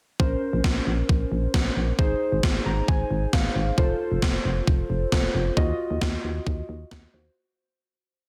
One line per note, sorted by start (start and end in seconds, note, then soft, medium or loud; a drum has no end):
0.20 0.35 A#1 loud
0.20 1.95 C#4 medium
0.20 1.95 A#4 medium
0.20 1.95 C5 medium
0.20 kick loud
0.53 0.61 A#1 loud
0.64 0.80 A#1 loud
0.64 kick loud
0.64 snare loud
0.87 1.03 A#1 medium
1.09 1.25 A#1 loud
1.09 kick loud
1.32 1.47 A#1 medium
1.54 1.70 A#1 loud
1.54 kick loud
1.54 snare loud
1.76 1.92 A#1 medium
1.99 2.14 G#1 loud
1.99 3.74 D#4 medium
1.99 3.74 G#4 medium
1.99 3.74 C5 medium
1.99 kick loud
2.32 2.40 G#1 loud
2.43 2.59 G#1 loud
2.43 kick loud
2.43 snare loud
2.66 2.82 G#1 medium
2.66 2.87 A#5 medium
2.88 3.04 G#1 loud
2.88 3.30 G#5 medium
2.88 kick loud
3.11 3.26 G#1 loud
3.33 3.49 G#1 loud
3.33 3.75 F5 medium
3.33 kick loud
3.33 snare loud
3.55 3.71 G#1 loud
3.78 3.94 F1 loud
3.78 5.09 F4 medium
3.78 5.09 A4 medium
3.78 5.10 C5 medium
3.78 kick loud
4.12 4.19 F1 medium
4.22 4.38 F1 loud
4.22 kick loud
4.22 snare loud
4.45 4.61 F1 loud
4.67 4.83 F1 loud
4.67 kick loud
4.90 5.05 F1 medium
5.12 5.28 F1 loud
5.12 5.56 F4 medium
5.12 5.57 A4 soft
5.12 5.57 C5 medium
5.12 kick loud
5.12 snare loud
5.35 5.50 F1 loud
5.57 5.73 D#2 loud
5.57 7.11 F4 medium
5.57 7.11 F#4 medium
5.57 7.11 D#5 medium
5.57 kick loud
5.91 5.98 D#2 medium
6.01 6.17 D#2 loud
6.01 kick loud
6.01 snare loud
6.24 6.40 D#2 medium
6.47 6.62 D#2 loud
6.47 kick loud
6.69 6.85 D#2 loud
6.91 7.07 D#2 loud
6.91 kick loud
6.91 snare loud
7.14 7.29 D#2 loud
7.14 7.36 F4 medium
7.14 7.36 F#4 medium
7.14 7.36 C5 medium